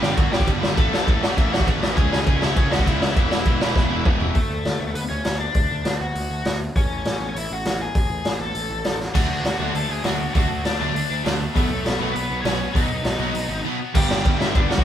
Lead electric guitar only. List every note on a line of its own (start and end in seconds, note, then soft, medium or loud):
0.01 0.16 G4 medium
0.01 0.16 G5 loud
0.16 0.31 F#4 medium
0.16 0.32 F#5 loud
0.32 0.46 G4 medium
0.32 0.46 G5 loud
0.78 0.98 A4 medium
0.78 1.00 A5 loud
1.00 1.20 A4 medium
1.00 1.21 A5 loud
1.22 1.35 F#4 medium
1.22 1.36 F#5 loud
1.38 1.51 E4 medium
1.38 1.52 E5 loud
1.52 1.66 F#4 medium
1.52 1.66 F#5 medium
1.96 2.17 G#4 loud
1.96 2.18 G#5 loud
2.18 2.39 G#4 medium
2.18 2.42 G#5 loud
2.43 2.56 E4 medium
2.43 2.57 E5 loud
2.57 2.70 C#4 medium
2.57 2.72 C#5 loud
2.71 2.85 F#4 medium
2.71 2.89 F#5 loud
2.86 3.14 E4 medium
2.86 3.18 E5 loud
3.19 4.03 E4 medium
3.19 4.04 E5 medium
4.35 4.91 A3 medium
4.35 4.97 A4 medium
4.95 5.00 B3 medium
4.95 5.00 B4 medium
5.10 5.38 C#4 medium
5.10 5.39 C#5 medium
5.39 5.96 D4 medium
5.39 6.02 D5 medium
6.01 6.57 F#4 medium
6.01 6.56 F#5 medium
6.76 7.32 C#4 medium
6.76 7.38 C#5 medium
7.37 7.50 E4 medium
7.37 7.51 E5 medium
7.54 7.80 F#4 medium
7.54 7.80 F#5 loud
7.82 8.37 G#4 medium
7.82 8.37 G#5 loud
8.41 8.97 A4 medium
8.41 8.96 A5 loud
9.15 9.71 F#4 medium
9.15 9.77 F#5 loud
9.75 9.89 A4 medium
9.75 9.91 A5 loud
9.90 10.04 G#4 medium
9.90 10.06 G#5 medium
10.04 10.32 F#4 medium
10.04 10.33 F#5 loud
10.33 10.62 F#4 medium
10.33 10.62 F#5 loud
10.65 10.79 D4 medium
10.65 10.80 D5 loud
10.81 11.22 D4 medium
10.81 11.23 D5 medium
11.57 12.12 A3 medium
11.57 12.18 A4 medium
12.12 12.43 B3 medium
12.12 12.41 B4 loud
12.41 12.73 C#4 medium
12.41 12.71 C#5 loud
12.73 13.61 D#4 medium
12.73 13.60 D#5 loud
13.95 14.16 G4 medium
13.95 14.16 G5 loud
14.17 14.38 G4 medium
14.17 14.38 G5 loud
14.39 14.53 E4 medium
14.39 14.55 E5 loud
14.55 14.69 D4 medium
14.55 14.69 D5 loud
14.70 14.84 F#4 medium
14.70 14.84 F#5 loud